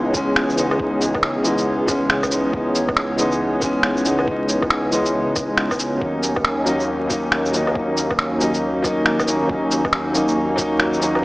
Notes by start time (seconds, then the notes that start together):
Already playing: C#2 E3 G#3 B3 C#4 D#4 G#4 C#5
0.12 E3 G#3 B3, kick, cabasa, shaker
0.16 C#4
0.36 finger snap
0.50 shaker
0.55 E3 G#3 B3 D#4, cabasa, shaker
0.71 E3, low woodblock
0.78 G#3 B3, kick
0.83 D#4
1.01 cabasa, shaker
1.15 kick, low woodblock
1.23 finger snap
1.43 E3 G#3 B3, cabasa, shaker
1.47 D#4
1.58 cabasa, shaker
1.86 E3 G#3 B3 C#4, kick, cabasa, low woodblock, shaker
2.10 finger snap
2.23 kick, low woodblock, shaker
2.29 E3 G#3 B3 D#4, cabasa, shaker
2.49 E3 G#3
2.53 B3 D#4, kick
2.75 cabasa, shaker
2.89 kick, low woodblock
2.97 finger snap
3.16 E3 G#3 B3, cabasa, shaker
3.20 D#4
3.32 shaker
3.54 D#4
3.60 E3 G#3 B3 C#4, kick, cabasa, shaker
3.83 finger snap
3.97 shaker
4.04 E3 G#3 B3, cabasa, shaker
4.08 D#4
4.19 low woodblock
4.23 E3 G#3
4.27 B3 D#4, kick
4.49 cabasa, shaker
4.62 kick, low woodblock
4.70 finger snap
4.90 E3 G#3 B3, cabasa, shaker
4.94 D#4
5.06 cabasa, shaker
5.36 kick, cabasa, low woodblock, shaker
5.45 E3 G#3
5.51 B3 D#4
5.57 finger snap
5.71 kick, low woodblock, shaker
5.79 cabasa, shaker
5.97 F#3 A#3
6.01 D#2 A#3 C#4 D#4, kick
6.23 cabasa, shaker
6.36 kick, low woodblock
6.45 finger snap
6.65 F#3 A#3 C#4 D#4, cabasa, shaker
6.80 shaker
7.08 F#3 A#3 C#4 D#4 F#4, kick, cabasa, shaker
7.32 finger snap
7.46 shaker
7.52 F#3 A#3 C#4 D#4, cabasa, shaker
7.67 low woodblock
7.71 F#3 A#3
7.75 C#4 D#4, kick
7.97 cabasa, shaker
8.11 kick, low woodblock
8.19 finger snap
8.39 F#3 A#3 C#4, cabasa, shaker
8.43 D#4
8.54 cabasa, shaker
8.82 F#3 A#3 C#4, kick, cabasa, low woodblock, shaker
8.86 D#4
9.06 finger snap
9.19 kick, low woodblock, shaker
9.26 F#3 A#3 C#4, cabasa, shaker
9.30 D#4
9.46 F#3 A#3, kick
9.51 C#4 D#4
9.71 cabasa, shaker
9.85 kick, low woodblock
9.93 finger snap
10.13 F#3 A#3 C#4, cabasa, shaker
10.17 D#4
10.28 shaker
10.56 F#3 A#3 C#4 D#4, kick, cabasa, shaker
10.80 finger snap
10.93 shaker
11.00 F#3 A#3 C#4, cabasa, shaker
11.04 D#4
11.15 F#3, low woodblock
11.22 A#3